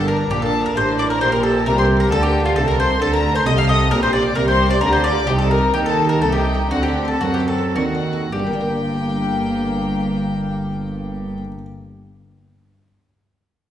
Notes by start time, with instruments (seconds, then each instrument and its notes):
Already playing: double bass section G1, harpsichord G2, cello section G2, viola section D4
0.01 harpsichord A#4
0.07 violin section A#4 A#5, mandolin A#4
0.17 harpsichord D5
0.30 double bass section A#1, cello section A#2, harpsichord A#2 C5, viola section D4, violin section G4 G5, mandolin G4
0.41 violin section A4 A5, mandolin A4
0.46 harpsichord D5
0.62 harpsichord A#4, violin section A#4 A#5
0.66 mandolin A#4
0.74 double bass section A1, harpsichord A2 G4, cello section A2, violin section C5 C6, mandolin C5
0.92 harpsichord D5
0.97 violin section D5 D6, mandolin D5
1.07 harpsichord A#4, violin section A#4 A#5, mandolin A#4
1.19 double bass section A#1, harpsichord A#2, cello section A#2, viola section G4, violin section C5 C6, mandolin C5
1.29 violin section A#4 A#5, mandolin A#4
1.36 harpsichord G4
1.42 violin section A4 A5, mandolin A4
1.52 harpsichord A#4
1.64 double bass section C2, harpsichord C3 A4, cello section C3, viola section G4, violin section A#4 A#5, mandolin A#4
1.76 violin section C5 C6, mandolin C5
1.82 harpsichord A#4
1.97 harpsichord G4, violin section A#4 A#5, mandolin A#4
2.09 double bass section D2, harpsichord D3 D4, cello section D3, violin section A4 A5, mandolin A4
2.21 violin section G4 G5, mandolin G4
2.26 harpsichord A#4
2.40 violin section F4, harpsichord G4
2.45 mandolin F4, violin section F5
2.55 double bass section C2, harpsichord C3, cello section C3, violin section A4 A5, mandolin A4, viola section A4
2.67 violin section A#4 A#5, mandolin A#4
2.71 harpsichord A4
2.79 violin section C5 C6, mandolin C5
2.86 harpsichord D#4
3.01 double bass section D2, harpsichord D3 D4, cello section D3, violin section A4 A5, viola section A4, mandolin A4
3.13 harpsichord A4, mandolin A#4, violin section A#4 A#5
3.31 harpsichord D#4, violin section C5, mandolin C5
3.36 violin section C6
3.45 double bass section C2, cello section C3, harpsichord C3 A3, viola section A4, mandolin D#5, violin section D#5 D#6
3.57 harpsichord A4, violin section F5 F6, mandolin F5
3.68 violin section D#5 D#6, mandolin D#5
3.76 harpsichord D#4
3.91 double bass section A#1, cello section A#2, harpsichord A#2, viola section G4, mandolin A#4, violin section A#4 A#5
4.02 harpsichord G4, violin section C5 C6, mandolin C5
4.13 mandolin D5, violin section D5 D6
4.22 harpsichord D5
4.35 double bass section C2, cello section C3, harpsichord C3 C5, viola section G4, mandolin A#4, violin section A#4 A#5
4.48 mandolin C5, violin section C5 C6, harpsichord D5
4.67 harpsichord G4, mandolin D5, violin section D6
4.71 violin section D5
4.81 double bass section D2, cello section D3, harpsichord D3 D4, viola section G4, mandolin A#4, violin section A#4 A#5
4.93 mandolin C5, violin section C5 C6, harpsichord D5
5.04 viola section F4, mandolin D5, violin section D5 D6
5.12 harpsichord G4
5.27 double bass section C2, harpsichord C3, cello section C3, viola section D#4, mandolin G4, violin section G4 G5
5.38 mandolin A4, violin section A4 A5
5.43 harpsichord G4
5.51 mandolin A#4, violin section A#4 A#5
5.58 harpsichord C5
5.73 double bass section D#2, harpsichord D#3 A#4, cello section D#3, viola section D#4, mandolin G4, violin section G4 G5
5.85 violin section A4 A5, mandolin A4, harpsichord C5
6.05 harpsichord G4
6.09 mandolin A#4, violin section A#4 A#5
6.20 double bass section C2, harpsichord C3, cello section C3, viola section D#4, mandolin A4, violin section A4 A5
6.32 mandolin G4, violin section G4 G5
6.38 harpsichord C4
6.55 harpsichord C4 D#4
6.70 double bass section D2, cello section D3, harpsichord D3, viola section C4, mandolin F#4, violin section F#4 F#5
6.83 mandolin G4, violin section G4 G5
6.88 harpsichord A4
7.05 mandolin A4, harpsichord C5, violin section A5
7.10 violin section A4
7.21 double bass section F#2, cello section F#3, harpsichord F#3 A#4, viola section C4, mandolin F#4, violin section F#4 F#5
7.34 mandolin G4, violin section G4 G5
7.40 harpsichord C5
7.48 mandolin A4, violin section A4 A5
7.58 harpsichord A4
7.75 double bass section D#2, cello section D#3, harpsichord D#3 D4, viola section C4, mandolin F#4, violin section F#4 F#5
7.95 harpsichord C5
8.13 harpsichord A4
8.32 double bass section G1, cello section G2, harpsichord G2, viola section A#3, mandolin G4, violin section G4 G5
8.39 harpsichord G3
8.47 harpsichord A#3
8.54 harpsichord D4
8.61 harpsichord A#4